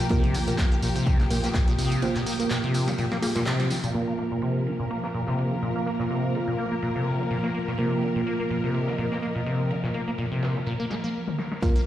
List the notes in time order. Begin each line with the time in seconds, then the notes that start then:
Already playing: F3 A#3 F4 G4 F5 A#5
0.09 C3 A#3 F4 A#4, kick, ride, tambourine
0.24 closed hi-hat
0.34 D#3, open hi-hat, ride, tambourine
0.48 A#2 A#3 F4 A#4, closed hi-hat, tambourine
0.58 A#3, kick, snare, clap, ride, tambourine
0.72 A#3, closed hi-hat
0.82 A#2, open hi-hat, ride, tambourine
0.96 C3, closed hi-hat, tambourine
1.06 D#6, kick, ride, tambourine
1.20 D#3, snare, closed hi-hat
1.30 A#2 A#3 F4 A#4, open hi-hat, ride, tambourine
1.44 A#3, snare, closed hi-hat, tambourine
1.54 A#3, kick, snare, clap, ride, tambourine
1.68 A#2, closed hi-hat
1.78 C3, open hi-hat, ride, tambourine
1.92 closed hi-hat, tambourine
2.02 D#3 A#3 F4 C5, ride, tambourine
2.16 A#2, snare, clap, closed hi-hat
2.26 A#3, open hi-hat, ride, tambourine
2.40 A#3 F4 A#4, closed hi-hat, tambourine
2.50 A#2, snare, clap, ride
2.64 C3, closed hi-hat
2.74 open hi-hat, ride, tambourine
2.88 D#3, snare, closed hi-hat, tambourine
2.98 A#2, ride, tambourine
3.12 A#3, snare, closed hi-hat
3.22 A#3 F4 G#4, snare, open hi-hat, tambourine
3.36 A#2 A#3 F4 A#4, snare, closed hi-hat, tambourine
3.46 C3, snare, clap, ride, tambourine
3.60 snare, closed hi-hat
3.70 D#3, snare, open hi-hat, ride, tambourine
3.84 A#2, closed hi-hat, tambourine
3.94 A#2 F3 A#3 F4 A#4, ride
4.08 A#3
4.18 A#3 A#5, ride
4.32 A#2
4.42 C3, ride
4.56 F5
4.61 F4
4.67 D#3, ride
4.80 A#2
4.91 A#3, ride
5.04 A#3, snare
5.14 A#2, ride
5.27 C3, snare
5.38 ride
5.52 D#3
5.62 A#2, ride
5.76 A#3
5.86 A#3, ride
5.99 A#2, snare
6.10 C3, ride
6.34 D#3, ride
6.48 A#2
6.58 A#3, ride
6.72 A#3
6.82 A#2, ride
6.96 C3
7.07 open hi-hat
7.20 D#3
7.30 A#2, ride
7.44 A#3, snare
7.54 A#3, ride
7.68 A#2, snare
7.78 C3 A#3 F4 A#4, ride
8.02 D#3, ride
8.16 A#2
8.26 A#3, ride
8.38 A#3 D#5
8.50 A#2, ride
8.64 C3
8.74 ride
8.87 D#3, snare
8.98 A#2, ride
9.12 A#3, snare
9.22 A#3, ride
9.36 A#2
9.46 C3, ride
9.70 D#3, ride
9.84 A#2, snare
9.94 A#3, ride
10.08 A#3
10.18 A#2, ride
10.32 C3
10.43 snare, ride
10.56 D#3
10.66 A#2, ride
10.80 A#3
10.90 G#3, snare, open hi-hat
11.04 A#3
11.28 high tom
11.38 snare
11.52 snare
11.62 A#2 F3 A#3 F4 A#4, kick, ride, tambourine
11.76 A#3, closed hi-hat